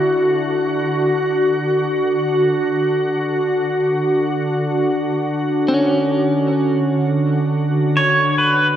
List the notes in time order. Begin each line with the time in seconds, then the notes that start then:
Already playing: D3 C#4 E4 F#4 B5
5.68 C#4
7.97 C#5
8.38 B4